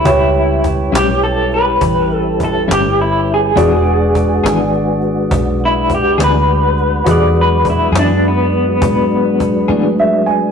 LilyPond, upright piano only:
\new Staff \with { instrumentName = "Upright piano" } { \time 12/8 \key e \mixolydian \tempo 4. = 69 << { r1. | r1. | r1 r4 e''8 gis''8 | } \\ { <g' b' cis''>1. | <fis' gis' d''>1. | <fis' gis' b'>1. | } >> }